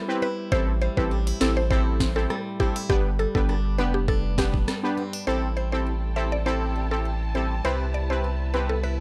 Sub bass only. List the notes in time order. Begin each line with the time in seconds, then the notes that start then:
0.52 A1
0.97 A1
1.41 A1
2.90 G1
3.35 G1
3.79 F1
5.27 A1
7.65 C2